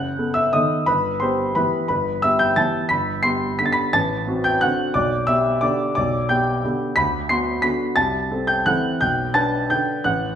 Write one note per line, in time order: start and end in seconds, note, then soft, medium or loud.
0.00 0.17 F#1 soft
0.00 0.32 F#5 medium
0.00 0.35 F#6 medium
0.18 0.51 B3 soft
0.18 0.51 A4 soft
0.34 0.52 E5 medium
0.34 0.53 E6 medium
0.53 0.85 D#3 soft
0.53 0.85 B3 soft
0.53 0.85 A4 soft
0.53 0.86 D#5 medium
0.53 0.88 D#6 medium
0.86 1.21 G1 medium
0.86 1.19 B4 medium
0.86 1.21 B5 medium
1.20 1.53 B3 soft
1.20 1.53 G4 soft
1.20 1.54 C5 medium
1.20 1.55 C6 medium
1.55 1.87 E3 soft
1.55 1.87 B3 soft
1.55 1.87 G4 soft
1.55 1.87 B4 medium
1.55 1.87 B5 medium
1.88 2.22 G1 soft
1.88 2.20 B4 medium
1.88 2.22 B5 medium
2.22 2.54 B3 soft
2.22 2.54 G4 soft
2.22 2.39 E5 medium
2.22 2.40 E6 medium
2.39 2.56 G5 medium
2.39 2.57 G6 medium
2.56 2.87 E3 soft
2.56 2.87 B3 soft
2.56 2.88 G4 soft
2.56 2.89 A5 medium
2.56 2.90 A6 medium
2.89 3.23 G1 medium
2.89 3.22 B5 medium
2.89 3.24 B6 medium
3.23 3.55 B3 soft
3.23 3.56 G4 soft
3.23 3.56 C6 medium
3.23 3.58 C7 medium
3.59 3.90 D3 soft
3.59 3.90 B3 soft
3.59 3.90 G4 soft
3.59 3.66 B6 medium
3.66 3.73 A6 medium
3.72 3.92 B5 medium
3.72 3.93 B6 medium
3.93 4.26 A1 medium
3.93 4.41 A5 medium
3.93 4.44 A6 loud
4.27 4.58 C4 soft
4.27 4.58 F#4 soft
4.44 4.60 G5 medium
4.44 4.61 G6 medium
4.61 4.91 D3 soft
4.61 4.91 C4 soft
4.61 4.92 F#4 soft
4.61 4.92 F#5 medium
4.61 4.94 F#6 medium
4.94 5.27 B1 medium
4.94 5.26 D5 medium
4.94 5.27 D6 medium
5.27 5.59 B3 soft
5.27 5.59 G4 soft
5.27 5.60 E5 medium
5.27 5.62 E6 medium
5.61 5.92 D3 soft
5.61 5.92 B3 soft
5.61 5.93 G4 soft
5.61 5.93 D5 medium
5.61 5.94 D6 medium
5.95 6.28 B1 medium
5.95 6.27 D5 medium
5.95 6.28 D6 medium
6.29 6.60 B3 soft
6.29 6.61 G4 soft
6.29 6.45 G5 medium
6.29 6.46 G6 medium
6.65 6.94 D3 soft
6.65 6.94 B3 soft
6.65 6.94 G4 soft
6.96 7.29 D2 medium
6.96 7.28 B5 medium
6.96 7.30 B6 medium
7.29 7.61 B3 soft
7.29 7.61 F#4 soft
7.29 7.62 C6 medium
7.29 7.64 C7 medium
7.62 7.93 D3 soft
7.62 7.93 B3 soft
7.62 7.94 F#4 soft
7.62 7.94 B5 medium
7.62 7.96 B6 medium
7.96 8.30 C2 medium
7.96 8.45 A5 medium
7.96 8.48 A6 medium
8.31 8.64 C4 soft
8.31 8.63 A4 soft
8.47 8.65 G5 medium
8.47 8.66 G6 medium
8.66 8.98 E3 soft
8.66 8.99 C4 soft
8.66 8.99 A4 soft
8.66 9.00 F#5 medium
8.66 9.01 F#6 medium
9.01 9.34 B1 medium
9.01 9.33 G5 medium
9.01 9.35 G6 medium
9.34 9.67 D4 soft
9.34 9.67 B4 soft
9.34 9.68 A5 medium
9.34 9.70 A6 medium
9.70 10.02 D3 soft
9.70 10.02 D4 soft
9.70 10.02 B4 soft
9.70 10.03 G5 medium
9.70 10.05 G6 medium
10.04 10.35 A1 medium
10.04 10.35 F#5 medium
10.04 10.35 F#6 medium